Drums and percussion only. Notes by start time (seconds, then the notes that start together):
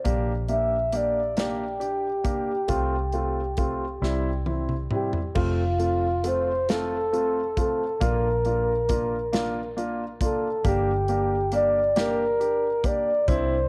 0.05 kick, closed hi-hat
0.48 closed hi-hat
0.92 closed hi-hat
1.37 snare, closed hi-hat
1.81 closed hi-hat
2.25 kick, closed hi-hat
2.68 kick, closed hi-hat
3.12 closed hi-hat
3.57 kick, closed hi-hat
4.04 snare
4.46 high tom
4.69 mid tom
4.91 mid tom
5.13 floor tom
5.35 kick, crash
5.80 closed hi-hat
6.24 closed hi-hat
6.69 snare, closed hi-hat
7.14 closed hi-hat
7.57 kick, closed hi-hat
8.01 kick, closed hi-hat
8.45 closed hi-hat
8.89 kick, closed hi-hat
9.33 snare, closed hi-hat
9.78 closed hi-hat
10.21 kick, closed hi-hat
10.65 kick, closed hi-hat
11.08 closed hi-hat
11.52 closed hi-hat
11.96 snare, closed hi-hat
12.41 closed hi-hat
12.84 kick, closed hi-hat
13.28 kick, closed hi-hat